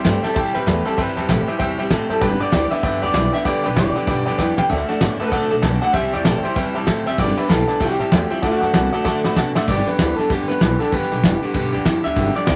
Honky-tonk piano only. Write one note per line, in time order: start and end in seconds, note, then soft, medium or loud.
0.04 0.16 C5 medium
0.04 0.16 E5 medium
0.04 0.16 G5 medium
0.22 0.30 C5 medium
0.22 0.30 E5 medium
0.22 0.31 G5 medium
0.34 0.46 C5 loud
0.34 0.47 E5 medium
0.34 0.47 A5 loud
0.54 0.62 C5 medium
0.54 0.62 E5 medium
0.54 0.62 G5 medium
0.67 0.78 C5 medium
0.67 0.78 E5 medium
0.67 0.79 A5 medium
0.85 0.93 C5 medium
0.85 0.93 E5 medium
0.85 0.93 G5 medium
0.97 1.09 C5 medium
0.97 1.09 E5 medium
0.97 1.09 G5 loud
1.16 1.24 C5 medium
1.16 1.24 E5 medium
1.16 1.24 A5 medium
1.29 1.40 C5 medium
1.29 1.40 E5 medium
1.29 1.41 G5 medium
1.48 1.55 C5 medium
1.48 1.55 E5 medium
1.48 1.55 G5 loud
1.59 1.71 C5 loud
1.59 1.71 E5 loud
1.59 1.71 G5 loud
1.78 1.86 C5 medium
1.78 1.86 E5 medium
1.78 1.86 G5 medium
1.91 2.02 C5 medium
1.91 2.02 E5 medium
1.91 2.03 A5 medium
2.10 2.17 C5 medium
2.10 2.17 E5 medium
2.10 2.17 A5 medium
2.21 2.33 B4 medium
2.21 2.33 D5 medium
2.21 2.33 G5 loud
2.40 2.48 B4 medium
2.40 2.48 D5 medium
2.40 2.48 G5 medium
2.52 2.64 B4 medium
2.52 2.64 D5 medium
2.52 2.64 G5 medium
2.71 2.79 B4 medium
2.71 2.79 D5 medium
2.71 2.79 G5 medium
2.83 2.95 B4 medium
2.83 2.95 D5 medium
2.83 2.95 G5 loud
3.02 3.09 B4 medium
3.02 3.10 D5 medium
3.02 3.10 G5 medium
3.14 3.26 B4 medium
3.14 3.26 D5 medium
3.14 3.26 G5 medium
3.32 3.40 B4 medium
3.32 3.40 D5 medium
3.32 3.41 G5 medium
3.45 3.57 B4 loud
3.45 3.57 D5 medium
3.45 3.57 G5 loud
3.64 3.71 B4 medium
3.64 3.72 D5 medium
3.64 3.72 G5 medium
3.76 3.88 B4 medium
3.76 3.88 D5 medium
3.76 3.88 G5 medium
3.95 4.03 B4 medium
3.95 4.03 D5 medium
3.95 4.03 G5 medium
4.07 4.19 B4 medium
4.07 4.19 D5 medium
4.07 4.19 G5 medium
4.25 4.33 B4 medium
4.25 4.33 D5 medium
4.25 4.34 G5 loud
4.38 4.50 B4 medium
4.38 4.50 D5 medium
4.38 4.50 G5 loud
4.57 4.65 B4 medium
4.57 4.65 D5 medium
4.57 4.65 F5 medium
4.70 4.81 A4 medium
4.70 4.81 D5 medium
4.70 4.81 F#5 loud
4.88 4.96 A4 medium
4.88 4.96 D5 medium
4.88 4.96 F#5 medium
5.00 5.12 A4 medium
5.00 5.12 D5 medium
5.00 5.12 F#5 medium
5.19 5.27 A4 medium
5.19 5.27 D5 medium
5.19 5.27 E5 medium
5.31 5.43 A4 medium
5.31 5.43 D5 medium
5.31 5.43 F#5 loud
5.50 5.58 A4 medium
5.50 5.58 D5 medium
5.50 5.58 E5 medium
5.62 5.74 A4 medium
5.62 5.74 D5 medium
5.62 5.74 A5 medium
5.81 5.89 A4 medium
5.81 5.89 D5 medium
5.81 5.89 F#5 medium
5.93 6.05 C5 loud
5.93 6.05 E5 medium
5.93 6.05 G5 loud
6.12 6.20 C5 medium
6.12 6.20 E5 medium
6.12 6.20 G5 medium
6.24 6.36 C5 medium
6.24 6.36 E5 medium
6.24 6.36 A5 medium
6.43 6.51 C5 medium
6.43 6.51 E5 medium
6.43 6.51 G5 medium
6.55 6.67 C5 medium
6.55 6.67 E5 medium
6.55 6.67 G5 loud
6.74 6.82 C5 medium
6.74 6.82 E5 medium
6.74 6.82 A5 medium
6.87 6.98 C5 medium
6.87 6.98 E5 medium
6.87 6.99 A5 medium
7.06 7.13 C5 medium
7.06 7.14 E5 medium
7.06 7.14 G5 medium
7.18 7.30 B4 medium
7.18 7.30 D5 medium
7.18 7.30 G5 loud
7.37 7.44 B4 medium
7.37 7.45 D5 medium
7.37 7.45 E5 medium
7.49 7.61 B4 medium
7.49 7.61 D5 medium
7.49 7.61 F5 medium
7.68 7.75 B4 medium
7.68 7.75 D5 medium
7.68 7.76 A5 medium
7.80 7.92 C5 loud
7.80 7.92 E5 medium
7.80 7.92 G5 loud
7.99 8.07 C5 medium
7.99 8.07 E5 medium
7.99 8.07 A5 medium
8.12 8.23 C5 medium
8.12 8.23 E5 medium
8.12 8.23 G5 medium
8.30 8.38 C5 medium
8.30 8.38 E5 medium
8.30 8.38 G5 loud
8.42 8.54 D5 medium
8.42 8.54 F#5 medium
8.42 8.55 A5 loud
8.61 8.69 D5 medium
8.61 8.69 F#5 medium
8.61 8.69 A5 medium
8.74 8.85 D5 medium
8.74 8.85 F#5 medium
8.74 8.86 A5 medium
8.92 9.00 D5 medium
8.92 9.00 F#5 medium
8.92 9.00 A5 loud
9.05 9.16 D5 loud
9.05 9.17 F#5 loud
9.05 9.17 A5 loud
9.24 9.32 D5 medium
9.24 9.32 F#5 medium
9.24 9.32 B5 medium
9.36 9.48 D5 medium
9.36 9.48 F#5 medium
9.36 9.48 A5 medium
9.55 9.63 D5 medium
9.55 9.63 F#5 medium
9.55 9.63 C6 loud